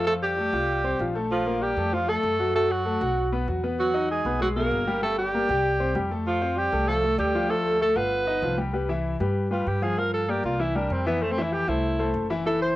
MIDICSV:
0, 0, Header, 1, 5, 480
1, 0, Start_track
1, 0, Key_signature, 0, "major"
1, 0, Tempo, 309757
1, 101, Time_signature, 4, 2, 24, 8
1, 19771, End_track
2, 0, Start_track
2, 0, Title_t, "Alto saxophone"
2, 0, Program_c, 0, 65
2, 105, Note_on_c, 0, 69, 98
2, 212, Note_off_c, 0, 69, 0
2, 357, Note_on_c, 0, 67, 103
2, 1730, Note_off_c, 0, 67, 0
2, 2035, Note_on_c, 0, 65, 86
2, 2519, Note_on_c, 0, 67, 85
2, 2543, Note_off_c, 0, 65, 0
2, 3001, Note_on_c, 0, 65, 95
2, 3025, Note_off_c, 0, 67, 0
2, 3240, Note_on_c, 0, 69, 92
2, 3263, Note_off_c, 0, 65, 0
2, 3953, Note_off_c, 0, 69, 0
2, 3962, Note_on_c, 0, 69, 93
2, 4210, Note_on_c, 0, 66, 78
2, 4233, Note_off_c, 0, 69, 0
2, 5221, Note_off_c, 0, 66, 0
2, 5888, Note_on_c, 0, 66, 85
2, 6323, Note_off_c, 0, 66, 0
2, 6371, Note_on_c, 0, 68, 76
2, 6805, Note_off_c, 0, 68, 0
2, 6847, Note_on_c, 0, 66, 80
2, 6950, Note_off_c, 0, 66, 0
2, 7073, Note_on_c, 0, 70, 78
2, 7738, Note_off_c, 0, 70, 0
2, 7797, Note_on_c, 0, 69, 94
2, 8014, Note_off_c, 0, 69, 0
2, 8035, Note_on_c, 0, 67, 90
2, 9407, Note_off_c, 0, 67, 0
2, 9713, Note_on_c, 0, 65, 85
2, 10201, Note_on_c, 0, 67, 92
2, 10224, Note_off_c, 0, 65, 0
2, 10670, Note_on_c, 0, 69, 94
2, 10693, Note_off_c, 0, 67, 0
2, 11139, Note_off_c, 0, 69, 0
2, 11149, Note_on_c, 0, 67, 88
2, 11632, Note_on_c, 0, 69, 101
2, 11655, Note_off_c, 0, 67, 0
2, 12106, Note_off_c, 0, 69, 0
2, 12121, Note_on_c, 0, 69, 89
2, 12352, Note_on_c, 0, 71, 100
2, 12375, Note_off_c, 0, 69, 0
2, 13306, Note_off_c, 0, 71, 0
2, 14754, Note_on_c, 0, 65, 71
2, 14997, Note_on_c, 0, 67, 75
2, 15020, Note_off_c, 0, 65, 0
2, 15240, Note_on_c, 0, 68, 88
2, 15263, Note_off_c, 0, 67, 0
2, 15474, Note_on_c, 0, 70, 97
2, 15497, Note_off_c, 0, 68, 0
2, 15707, Note_off_c, 0, 70, 0
2, 15713, Note_on_c, 0, 69, 85
2, 15963, Note_on_c, 0, 67, 76
2, 15986, Note_off_c, 0, 69, 0
2, 16191, Note_off_c, 0, 67, 0
2, 16198, Note_on_c, 0, 65, 83
2, 16435, Note_on_c, 0, 64, 76
2, 16458, Note_off_c, 0, 65, 0
2, 16677, Note_on_c, 0, 62, 68
2, 16700, Note_off_c, 0, 64, 0
2, 16924, Note_on_c, 0, 60, 67
2, 16947, Note_off_c, 0, 62, 0
2, 17152, Note_off_c, 0, 60, 0
2, 17159, Note_on_c, 0, 59, 79
2, 17392, Note_on_c, 0, 57, 70
2, 17416, Note_off_c, 0, 59, 0
2, 17541, Note_on_c, 0, 60, 72
2, 17564, Note_off_c, 0, 57, 0
2, 17709, Note_on_c, 0, 64, 69
2, 17733, Note_off_c, 0, 60, 0
2, 17866, Note_on_c, 0, 67, 85
2, 17889, Note_off_c, 0, 64, 0
2, 18108, Note_on_c, 0, 64, 94
2, 18131, Note_off_c, 0, 67, 0
2, 18824, Note_off_c, 0, 64, 0
2, 19314, Note_on_c, 0, 69, 88
2, 19531, Note_off_c, 0, 69, 0
2, 19555, Note_on_c, 0, 72, 99
2, 19771, Note_off_c, 0, 72, 0
2, 19771, End_track
3, 0, Start_track
3, 0, Title_t, "Grand piano"
3, 0, Program_c, 1, 0
3, 109, Note_on_c, 1, 53, 64
3, 115, Note_on_c, 1, 65, 72
3, 500, Note_off_c, 1, 53, 0
3, 504, Note_off_c, 1, 65, 0
3, 586, Note_on_c, 1, 57, 70
3, 590, Note_on_c, 1, 69, 67
3, 782, Note_off_c, 1, 57, 0
3, 784, Note_off_c, 1, 69, 0
3, 822, Note_on_c, 1, 65, 71
3, 827, Note_on_c, 1, 77, 61
3, 1217, Note_off_c, 1, 65, 0
3, 1220, Note_off_c, 1, 77, 0
3, 1302, Note_on_c, 1, 60, 68
3, 1310, Note_on_c, 1, 72, 76
3, 1500, Note_off_c, 1, 60, 0
3, 1505, Note_off_c, 1, 72, 0
3, 1545, Note_on_c, 1, 53, 75
3, 1551, Note_on_c, 1, 65, 74
3, 1742, Note_off_c, 1, 53, 0
3, 1745, Note_off_c, 1, 65, 0
3, 1783, Note_on_c, 1, 57, 72
3, 1790, Note_on_c, 1, 69, 74
3, 2178, Note_off_c, 1, 57, 0
3, 2182, Note_off_c, 1, 69, 0
3, 2266, Note_on_c, 1, 58, 71
3, 2272, Note_on_c, 1, 70, 67
3, 2660, Note_off_c, 1, 58, 0
3, 2663, Note_off_c, 1, 70, 0
3, 2758, Note_on_c, 1, 57, 60
3, 2759, Note_on_c, 1, 69, 71
3, 2950, Note_off_c, 1, 57, 0
3, 2950, Note_off_c, 1, 69, 0
3, 2995, Note_on_c, 1, 53, 76
3, 2998, Note_on_c, 1, 65, 68
3, 3188, Note_off_c, 1, 53, 0
3, 3190, Note_off_c, 1, 65, 0
3, 3224, Note_on_c, 1, 57, 76
3, 3233, Note_on_c, 1, 69, 78
3, 3619, Note_off_c, 1, 57, 0
3, 3624, Note_off_c, 1, 69, 0
3, 3712, Note_on_c, 1, 54, 75
3, 3715, Note_on_c, 1, 66, 73
3, 3906, Note_off_c, 1, 54, 0
3, 3908, Note_off_c, 1, 66, 0
3, 3943, Note_on_c, 1, 54, 74
3, 3949, Note_on_c, 1, 66, 69
3, 4338, Note_off_c, 1, 54, 0
3, 4342, Note_off_c, 1, 66, 0
3, 4422, Note_on_c, 1, 57, 65
3, 4425, Note_on_c, 1, 69, 72
3, 4620, Note_off_c, 1, 57, 0
3, 4622, Note_off_c, 1, 69, 0
3, 4663, Note_on_c, 1, 66, 67
3, 4666, Note_on_c, 1, 78, 64
3, 5058, Note_off_c, 1, 66, 0
3, 5060, Note_off_c, 1, 78, 0
3, 5150, Note_on_c, 1, 59, 73
3, 5157, Note_on_c, 1, 71, 78
3, 5345, Note_off_c, 1, 59, 0
3, 5349, Note_off_c, 1, 71, 0
3, 5386, Note_on_c, 1, 54, 66
3, 5394, Note_on_c, 1, 66, 74
3, 5583, Note_off_c, 1, 54, 0
3, 5587, Note_off_c, 1, 66, 0
3, 5632, Note_on_c, 1, 59, 71
3, 5637, Note_on_c, 1, 71, 71
3, 6023, Note_off_c, 1, 59, 0
3, 6026, Note_off_c, 1, 71, 0
3, 6102, Note_on_c, 1, 63, 72
3, 6109, Note_on_c, 1, 75, 66
3, 6497, Note_off_c, 1, 63, 0
3, 6501, Note_off_c, 1, 75, 0
3, 6595, Note_on_c, 1, 59, 67
3, 6599, Note_on_c, 1, 71, 71
3, 6787, Note_off_c, 1, 59, 0
3, 6790, Note_off_c, 1, 71, 0
3, 6827, Note_on_c, 1, 56, 63
3, 6831, Note_on_c, 1, 68, 68
3, 7023, Note_off_c, 1, 56, 0
3, 7025, Note_off_c, 1, 68, 0
3, 7068, Note_on_c, 1, 47, 74
3, 7073, Note_on_c, 1, 68, 69
3, 7460, Note_off_c, 1, 47, 0
3, 7463, Note_off_c, 1, 68, 0
3, 7551, Note_on_c, 1, 55, 84
3, 7555, Note_on_c, 1, 67, 87
3, 7745, Note_off_c, 1, 55, 0
3, 7747, Note_off_c, 1, 67, 0
3, 7786, Note_on_c, 1, 55, 66
3, 7791, Note_on_c, 1, 67, 71
3, 8178, Note_off_c, 1, 55, 0
3, 8181, Note_off_c, 1, 67, 0
3, 8279, Note_on_c, 1, 58, 67
3, 8282, Note_on_c, 1, 70, 72
3, 8469, Note_off_c, 1, 58, 0
3, 8471, Note_off_c, 1, 70, 0
3, 8518, Note_on_c, 1, 67, 68
3, 8521, Note_on_c, 1, 79, 71
3, 8906, Note_off_c, 1, 67, 0
3, 8907, Note_off_c, 1, 79, 0
3, 8986, Note_on_c, 1, 60, 75
3, 8989, Note_on_c, 1, 72, 73
3, 9182, Note_off_c, 1, 60, 0
3, 9183, Note_off_c, 1, 72, 0
3, 9223, Note_on_c, 1, 55, 71
3, 9231, Note_on_c, 1, 67, 77
3, 9420, Note_off_c, 1, 55, 0
3, 9424, Note_off_c, 1, 67, 0
3, 9467, Note_on_c, 1, 57, 69
3, 9471, Note_on_c, 1, 69, 79
3, 9859, Note_off_c, 1, 57, 0
3, 9861, Note_off_c, 1, 69, 0
3, 9942, Note_on_c, 1, 60, 64
3, 9945, Note_on_c, 1, 72, 76
3, 10335, Note_off_c, 1, 60, 0
3, 10338, Note_off_c, 1, 72, 0
3, 10421, Note_on_c, 1, 57, 68
3, 10426, Note_on_c, 1, 69, 66
3, 10618, Note_off_c, 1, 57, 0
3, 10621, Note_off_c, 1, 69, 0
3, 10663, Note_on_c, 1, 53, 71
3, 10670, Note_on_c, 1, 65, 69
3, 10859, Note_off_c, 1, 53, 0
3, 10863, Note_off_c, 1, 65, 0
3, 10903, Note_on_c, 1, 57, 69
3, 10906, Note_on_c, 1, 69, 79
3, 11296, Note_off_c, 1, 57, 0
3, 11298, Note_off_c, 1, 69, 0
3, 11385, Note_on_c, 1, 53, 87
3, 11393, Note_on_c, 1, 65, 89
3, 11580, Note_off_c, 1, 53, 0
3, 11585, Note_off_c, 1, 65, 0
3, 11623, Note_on_c, 1, 53, 71
3, 11626, Note_on_c, 1, 65, 75
3, 12016, Note_off_c, 1, 53, 0
3, 12017, Note_off_c, 1, 65, 0
3, 12100, Note_on_c, 1, 57, 69
3, 12103, Note_on_c, 1, 69, 72
3, 12297, Note_off_c, 1, 57, 0
3, 12299, Note_off_c, 1, 69, 0
3, 12339, Note_on_c, 1, 65, 61
3, 12345, Note_on_c, 1, 77, 72
3, 12733, Note_off_c, 1, 65, 0
3, 12736, Note_off_c, 1, 77, 0
3, 12815, Note_on_c, 1, 63, 75
3, 12820, Note_on_c, 1, 75, 73
3, 13014, Note_off_c, 1, 63, 0
3, 13017, Note_off_c, 1, 75, 0
3, 13054, Note_on_c, 1, 53, 74
3, 13059, Note_on_c, 1, 65, 69
3, 13253, Note_off_c, 1, 53, 0
3, 13257, Note_off_c, 1, 65, 0
3, 13291, Note_on_c, 1, 55, 70
3, 13295, Note_on_c, 1, 67, 74
3, 13491, Note_off_c, 1, 55, 0
3, 13494, Note_off_c, 1, 67, 0
3, 13532, Note_on_c, 1, 55, 62
3, 13539, Note_on_c, 1, 67, 59
3, 13539, Note_on_c, 1, 71, 64
3, 13732, Note_off_c, 1, 55, 0
3, 13736, Note_off_c, 1, 67, 0
3, 13736, Note_off_c, 1, 71, 0
3, 13772, Note_on_c, 1, 52, 77
3, 13779, Note_on_c, 1, 64, 71
3, 13781, Note_on_c, 1, 76, 76
3, 14169, Note_off_c, 1, 52, 0
3, 14173, Note_off_c, 1, 64, 0
3, 14174, Note_off_c, 1, 76, 0
3, 14257, Note_on_c, 1, 55, 60
3, 14264, Note_on_c, 1, 67, 72
3, 14266, Note_on_c, 1, 71, 64
3, 14652, Note_off_c, 1, 55, 0
3, 14656, Note_off_c, 1, 67, 0
3, 14657, Note_off_c, 1, 71, 0
3, 14732, Note_on_c, 1, 55, 65
3, 14736, Note_on_c, 1, 67, 65
3, 14741, Note_on_c, 1, 71, 64
3, 15128, Note_off_c, 1, 55, 0
3, 15131, Note_off_c, 1, 67, 0
3, 15134, Note_off_c, 1, 71, 0
3, 15216, Note_on_c, 1, 53, 83
3, 15217, Note_on_c, 1, 65, 71
3, 15225, Note_on_c, 1, 77, 83
3, 15414, Note_off_c, 1, 53, 0
3, 15415, Note_off_c, 1, 65, 0
3, 15419, Note_off_c, 1, 77, 0
3, 15459, Note_on_c, 1, 53, 64
3, 15462, Note_on_c, 1, 65, 67
3, 15466, Note_on_c, 1, 77, 70
3, 15853, Note_off_c, 1, 53, 0
3, 15855, Note_off_c, 1, 65, 0
3, 15857, Note_off_c, 1, 77, 0
3, 15936, Note_on_c, 1, 58, 63
3, 15943, Note_on_c, 1, 70, 66
3, 15947, Note_on_c, 1, 74, 64
3, 16331, Note_off_c, 1, 58, 0
3, 16335, Note_off_c, 1, 70, 0
3, 16338, Note_off_c, 1, 74, 0
3, 16415, Note_on_c, 1, 52, 72
3, 16420, Note_on_c, 1, 64, 72
3, 16423, Note_on_c, 1, 76, 72
3, 16613, Note_off_c, 1, 52, 0
3, 16616, Note_off_c, 1, 64, 0
3, 16618, Note_off_c, 1, 76, 0
3, 16662, Note_on_c, 1, 55, 73
3, 16666, Note_on_c, 1, 67, 76
3, 16673, Note_on_c, 1, 70, 65
3, 17054, Note_off_c, 1, 55, 0
3, 17057, Note_off_c, 1, 67, 0
3, 17061, Note_off_c, 1, 70, 0
3, 17139, Note_on_c, 1, 52, 82
3, 17146, Note_on_c, 1, 76, 84
3, 17147, Note_on_c, 1, 64, 76
3, 17336, Note_off_c, 1, 52, 0
3, 17340, Note_off_c, 1, 76, 0
3, 17341, Note_off_c, 1, 64, 0
3, 17382, Note_on_c, 1, 57, 60
3, 17387, Note_on_c, 1, 69, 65
3, 17389, Note_on_c, 1, 72, 62
3, 17578, Note_off_c, 1, 57, 0
3, 17581, Note_off_c, 1, 69, 0
3, 17582, Note_off_c, 1, 72, 0
3, 17627, Note_on_c, 1, 52, 81
3, 17632, Note_on_c, 1, 64, 80
3, 17638, Note_on_c, 1, 76, 80
3, 18017, Note_off_c, 1, 52, 0
3, 18021, Note_off_c, 1, 64, 0
3, 18024, Note_off_c, 1, 76, 0
3, 18110, Note_on_c, 1, 57, 69
3, 18113, Note_on_c, 1, 69, 63
3, 18116, Note_on_c, 1, 72, 76
3, 18499, Note_off_c, 1, 57, 0
3, 18501, Note_off_c, 1, 69, 0
3, 18503, Note_off_c, 1, 72, 0
3, 18577, Note_on_c, 1, 57, 72
3, 18583, Note_on_c, 1, 69, 71
3, 18591, Note_on_c, 1, 72, 76
3, 18972, Note_off_c, 1, 57, 0
3, 18976, Note_off_c, 1, 69, 0
3, 18980, Note_off_c, 1, 72, 0
3, 19057, Note_on_c, 1, 52, 80
3, 19064, Note_on_c, 1, 64, 86
3, 19067, Note_on_c, 1, 76, 77
3, 19256, Note_off_c, 1, 52, 0
3, 19259, Note_off_c, 1, 64, 0
3, 19262, Note_off_c, 1, 76, 0
3, 19300, Note_on_c, 1, 52, 76
3, 19304, Note_on_c, 1, 64, 66
3, 19308, Note_on_c, 1, 76, 76
3, 19694, Note_off_c, 1, 52, 0
3, 19697, Note_off_c, 1, 64, 0
3, 19699, Note_off_c, 1, 76, 0
3, 19771, End_track
4, 0, Start_track
4, 0, Title_t, "Tenor saxophone"
4, 0, Program_c, 2, 66
4, 109, Note_on_c, 2, 57, 89
4, 215, Note_off_c, 2, 57, 0
4, 349, Note_on_c, 2, 55, 81
4, 1726, Note_off_c, 2, 55, 0
4, 2033, Note_on_c, 2, 53, 74
4, 2500, Note_on_c, 2, 55, 71
4, 2524, Note_off_c, 2, 53, 0
4, 2986, Note_on_c, 2, 53, 66
4, 3010, Note_off_c, 2, 55, 0
4, 3211, Note_on_c, 2, 57, 77
4, 3235, Note_off_c, 2, 53, 0
4, 3939, Note_off_c, 2, 57, 0
4, 3949, Note_on_c, 2, 57, 83
4, 4183, Note_on_c, 2, 54, 68
4, 4206, Note_off_c, 2, 57, 0
4, 5208, Note_off_c, 2, 54, 0
4, 5870, Note_on_c, 2, 54, 74
4, 6314, Note_off_c, 2, 54, 0
4, 6361, Note_on_c, 2, 56, 70
4, 6800, Note_off_c, 2, 56, 0
4, 6844, Note_on_c, 2, 54, 70
4, 6948, Note_off_c, 2, 54, 0
4, 7080, Note_on_c, 2, 58, 73
4, 7742, Note_off_c, 2, 58, 0
4, 7801, Note_on_c, 2, 57, 76
4, 8016, Note_off_c, 2, 57, 0
4, 8035, Note_on_c, 2, 55, 70
4, 9407, Note_off_c, 2, 55, 0
4, 9713, Note_on_c, 2, 53, 81
4, 10182, Note_on_c, 2, 55, 72
4, 10205, Note_off_c, 2, 53, 0
4, 10659, Note_on_c, 2, 57, 72
4, 10682, Note_off_c, 2, 55, 0
4, 11120, Note_off_c, 2, 57, 0
4, 11129, Note_on_c, 2, 55, 81
4, 11602, Note_on_c, 2, 57, 93
4, 11625, Note_off_c, 2, 55, 0
4, 12080, Note_off_c, 2, 57, 0
4, 12090, Note_on_c, 2, 57, 78
4, 12345, Note_on_c, 2, 59, 80
4, 12368, Note_off_c, 2, 57, 0
4, 13302, Note_off_c, 2, 59, 0
4, 19771, End_track
5, 0, Start_track
5, 0, Title_t, "Upright bass"
5, 0, Program_c, 3, 32
5, 0, Note_on_c, 3, 41, 81
5, 735, Note_off_c, 3, 41, 0
5, 816, Note_on_c, 3, 36, 84
5, 1490, Note_off_c, 3, 36, 0
5, 1538, Note_on_c, 3, 34, 87
5, 2656, Note_off_c, 3, 34, 0
5, 2738, Note_on_c, 3, 41, 82
5, 3412, Note_off_c, 3, 41, 0
5, 3460, Note_on_c, 3, 42, 93
5, 4577, Note_off_c, 3, 42, 0
5, 4663, Note_on_c, 3, 35, 94
5, 5334, Note_off_c, 3, 35, 0
5, 5387, Note_on_c, 3, 40, 82
5, 6500, Note_off_c, 3, 40, 0
5, 6582, Note_on_c, 3, 35, 80
5, 7252, Note_off_c, 3, 35, 0
5, 7300, Note_on_c, 3, 31, 87
5, 8415, Note_off_c, 3, 31, 0
5, 8504, Note_on_c, 3, 36, 93
5, 9173, Note_off_c, 3, 36, 0
5, 9218, Note_on_c, 3, 41, 84
5, 10334, Note_off_c, 3, 41, 0
5, 10417, Note_on_c, 3, 36, 82
5, 11088, Note_off_c, 3, 36, 0
5, 11132, Note_on_c, 3, 38, 95
5, 12250, Note_off_c, 3, 38, 0
5, 12331, Note_on_c, 3, 31, 83
5, 13005, Note_off_c, 3, 31, 0
5, 13050, Note_on_c, 3, 36, 90
5, 14169, Note_off_c, 3, 36, 0
5, 14258, Note_on_c, 3, 43, 89
5, 14928, Note_off_c, 3, 43, 0
5, 14980, Note_on_c, 3, 43, 84
5, 16094, Note_off_c, 3, 43, 0
5, 16172, Note_on_c, 3, 36, 85
5, 16845, Note_off_c, 3, 36, 0
5, 16891, Note_on_c, 3, 41, 89
5, 18009, Note_off_c, 3, 41, 0
5, 18093, Note_on_c, 3, 36, 81
5, 18766, Note_off_c, 3, 36, 0
5, 18809, Note_on_c, 3, 30, 88
5, 19771, Note_off_c, 3, 30, 0
5, 19771, End_track
0, 0, End_of_file